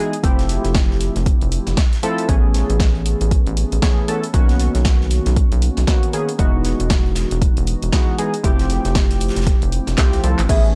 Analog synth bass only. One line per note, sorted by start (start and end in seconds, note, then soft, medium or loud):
0.24 0.58 F1 loud
0.65 1.10 F1 medium
1.16 1.34 F1 loud
1.42 1.59 F1 loud
1.67 1.75 F1 medium
2.29 2.64 A1 loud
2.70 3.15 A1 loud
3.21 3.39 A1 loud
3.47 3.65 A1 loud
3.72 3.80 A1 medium
4.34 4.69 B1 loud
4.75 5.20 B1 medium
5.26 5.44 B1 loud
5.52 5.70 B1 loud
5.77 5.85 B1 medium
6.39 6.74 E1 loud
6.80 7.25 E1 loud
7.31 7.49 E1 medium
7.57 7.75 E1 loud
7.83 7.90 E1 medium
8.44 8.79 F1 loud
8.85 9.30 F1 loud
9.36 9.54 F1 medium
9.62 9.80 F1 loud
9.88 9.95 F1 medium
9.98 10.18 C2 medium
10.24 10.35 C2 medium
10.39 10.47 A1 medium
10.49 10.75 A1 loud